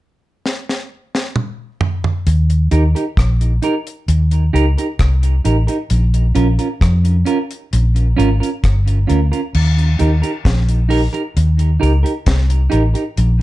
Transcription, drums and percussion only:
0.46 snare
0.69 snare
1.15 snare
1.36 mid tom
1.81 floor tom
2.04 floor tom
2.27 closed hi-hat
2.50 closed hi-hat
2.71 closed hi-hat
2.96 closed hi-hat
3.17 kick, cross-stick, closed hi-hat
3.41 closed hi-hat
3.63 closed hi-hat
3.87 closed hi-hat
4.08 closed hi-hat
4.31 closed hi-hat
4.56 closed hi-hat
4.78 closed hi-hat
4.99 kick, cross-stick, closed hi-hat
5.23 closed hi-hat
5.45 closed hi-hat
5.68 closed hi-hat
5.90 closed hi-hat
6.14 closed hi-hat
6.35 closed hi-hat
6.59 closed hi-hat
6.81 kick, cross-stick, closed hi-hat
7.05 closed hi-hat
7.26 closed hi-hat
7.51 closed hi-hat
7.73 closed hi-hat
7.96 closed hi-hat
8.20 closed hi-hat
8.43 closed hi-hat
8.64 kick, cross-stick, closed hi-hat
8.88 closed hi-hat
9.10 closed hi-hat
9.33 closed hi-hat
9.54 crash
9.79 closed hi-hat
9.99 closed hi-hat
10.23 closed hi-hat
10.45 kick, snare, closed hi-hat
10.69 closed hi-hat
10.91 open hi-hat
11.14 closed hi-hat
11.37 closed hi-hat
11.59 closed hi-hat
11.83 closed hi-hat
12.06 closed hi-hat
12.26 kick, snare, closed hi-hat
12.50 closed hi-hat
12.72 closed hi-hat
12.95 closed hi-hat
13.17 closed hi-hat

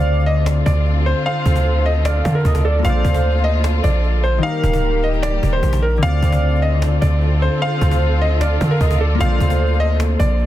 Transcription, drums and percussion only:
0.02 cajon slap
0.13 cajon slap
0.20 cajon slap
0.26 cajon slap
0.46 cajon slap
0.66 cajon bass
0.86 cajon slap
1.06 cajon slap
1.26 cajon slap
1.46 cajon bass
1.56 cajon bass
1.85 cajon slap
2.05 cajon slap
2.25 cajon bass
2.30 cajon slap
2.35 cajon slap
2.40 cajon slap
2.45 cajon bass
2.55 cajon bass
2.85 cajon bass
3.05 cajon bass
3.09 cajon slap
3.14 cajon bass
3.19 cajon slap
3.31 cajon slap
3.38 cajon slap
3.44 cajon slap
3.64 cajon slap
3.84 cajon bass
4.04 cajon slap
4.24 cajon slap
4.44 cajon slap
4.64 cajon bass
4.73 cajon bass
4.83 cajon slap
5.03 cajon slap
5.13 cajon slap
5.23 cajon slap
5.43 cajon bass
5.50 cajon slap
5.56 cajon slap
5.63 cajon bass
5.73 cajon bass
5.83 cajon slap
5.89 cajon slap
5.96 cajon slap
6.03 cajon bass
6.23 cajon bass
6.27 cajon slap
6.32 cajon bass
6.37 cajon slap
6.49 cajon slap
6.56 cajon slap
6.62 cajon slap
6.82 cajon slap
7.02 cajon bass
7.22 cajon slap
7.42 cajon slap
7.62 cajon slap
7.81 cajon bass
7.91 cajon bass
8.01 cajon slap
8.21 cajon slap
8.41 cajon slap
8.61 cajon bass
8.66 cajon slap
8.71 cajon slap
8.76 cajon slap
8.81 cajon bass
8.91 cajon bass
9.20 cajon bass
9.40 cajon bass
9.45 cajon slap
9.50 cajon bass
9.55 cajon slap
9.67 cajon slap
9.73 cajon slap
9.80 cajon slap
10.00 cajon slap
10.20 cajon bass
10.40 cajon slap

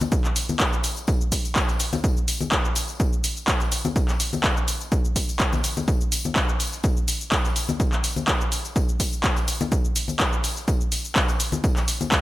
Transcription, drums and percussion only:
0.01 tambourine, high conga, cabasa
0.12 kick, tambourine, cabasa
0.25 clap, cabasa
0.36 open hi-hat, tambourine, cabasa
0.49 tambourine, high conga, cabasa
0.59 kick, clap, tambourine, cabasa
0.73 cabasa
0.83 open hi-hat, tambourine, cabasa
0.96 tambourine, cabasa
1.07 kick, tambourine, cabasa
1.21 cabasa
1.32 kick, open hi-hat, tambourine, cabasa
1.45 tambourine, cabasa
1.56 kick, clap, tambourine, cabasa
1.69 tambourine, cabasa
1.79 open hi-hat, tambourine, cabasa
1.93 tambourine, high conga, cabasa
2.04 kick, tambourine, cabasa
2.17 cabasa
2.28 open hi-hat, tambourine, cabasa
2.41 tambourine, high conga, cabasa
2.52 kick, clap, tambourine, cabasa
2.65 cabasa
2.75 open hi-hat, tambourine, cabasa
2.88 tambourine, cabasa
3.00 kick, tambourine, cabasa
3.13 cabasa
3.24 open hi-hat, tambourine, cabasa
3.36 tambourine, cabasa
3.48 kick, clap, tambourine, cabasa
3.60 tambourine, cabasa
3.71 open hi-hat, tambourine, cabasa
3.85 tambourine, high conga, cabasa
3.96 kick, tambourine, cabasa
4.09 clap, tambourine, cabasa
4.20 open hi-hat, tambourine, cabasa
4.33 tambourine, high conga, cabasa
4.44 kick, clap, tambourine, cabasa
4.57 cabasa
4.68 open hi-hat, tambourine, cabasa
4.80 tambourine, cabasa
4.92 kick, tambourine, cabasa
5.05 cabasa
5.16 kick, open hi-hat, tambourine, cabasa
5.29 tambourine, cabasa
5.40 kick, clap, tambourine, cabasa
5.53 tambourine, high conga, cabasa
5.64 open hi-hat, tambourine, cabasa
5.77 tambourine, high conga, cabasa
5.88 kick, tambourine, cabasa
6.01 cabasa
6.12 open hi-hat, tambourine, cabasa
6.24 tambourine, high conga, cabasa
6.36 kick, clap, tambourine, cabasa
6.49 cabasa
6.60 open hi-hat, tambourine, cabasa
6.72 tambourine, cabasa
6.83 kick, tambourine, cabasa
6.97 cabasa
7.08 open hi-hat, tambourine, cabasa
7.21 tambourine, cabasa
7.32 kick, clap, tambourine, cabasa
7.45 tambourine, cabasa
7.56 open hi-hat, tambourine, cabasa
7.69 tambourine, high conga, cabasa
7.80 kick, tambourine, cabasa
7.93 clap, cabasa
8.04 open hi-hat, tambourine, cabasa
8.16 tambourine, high conga, cabasa
8.28 kick, clap, tambourine, cabasa
8.41 cabasa
8.52 open hi-hat, tambourine, cabasa
8.65 tambourine, cabasa
8.76 kick, tambourine, cabasa
8.89 cabasa
9.00 kick, open hi-hat, tambourine, cabasa
9.12 tambourine, cabasa
9.24 kick, clap, tambourine, cabasa
9.36 tambourine, cabasa
9.48 open hi-hat, tambourine, cabasa
9.61 tambourine, high conga, cabasa
9.72 kick, tambourine, cabasa
9.85 cabasa
9.95 open hi-hat, tambourine, cabasa
10.08 tambourine, high conga, cabasa
10.20 kick, clap, tambourine, cabasa
10.33 cabasa
10.44 open hi-hat, tambourine, cabasa
10.56 tambourine, cabasa
10.68 kick, tambourine, cabasa
10.81 cabasa
10.92 open hi-hat, tambourine, cabasa
11.04 tambourine, cabasa
11.16 kick, clap, tambourine, cabasa
11.28 tambourine, cabasa
11.40 open hi-hat, tambourine, cabasa
11.52 tambourine, high conga, cabasa
11.64 kick, tambourine, cabasa
11.77 clap, tambourine, cabasa
11.88 open hi-hat, tambourine, cabasa
12.01 tambourine, high conga, cabasa
12.12 kick, clap, tambourine, cabasa

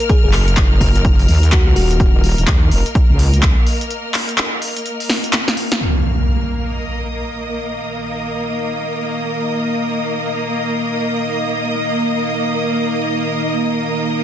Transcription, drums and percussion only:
0.00 closed hi-hat
0.09 kick, closed hi-hat
0.33 clap, open hi-hat
0.48 closed hi-hat
0.57 kick, clap, closed hi-hat
0.81 kick, open hi-hat
0.96 closed hi-hat
1.05 kick, closed hi-hat
1.19 open hi-hat
1.29 open hi-hat
1.43 closed hi-hat
1.52 kick, clap, closed hi-hat
1.76 open hi-hat
1.91 closed hi-hat
2.00 kick, closed hi-hat
2.24 open hi-hat
2.38 closed hi-hat
2.47 kick, clap, closed hi-hat
2.71 open hi-hat
2.86 closed hi-hat
2.95 kick, closed hi-hat
3.19 open hi-hat
3.34 closed hi-hat
3.43 kick, clap, closed hi-hat
3.67 open hi-hat
3.81 closed hi-hat
3.91 closed hi-hat
4.14 clap, open hi-hat
4.29 closed hi-hat
4.38 clap, closed hi-hat
4.62 open hi-hat
4.77 closed hi-hat
4.86 closed hi-hat
5.00 open hi-hat
5.10 snare, open hi-hat
5.24 closed hi-hat
5.33 snare, clap, closed hi-hat
5.48 snare
5.57 open hi-hat
5.72 snare, closed hi-hat

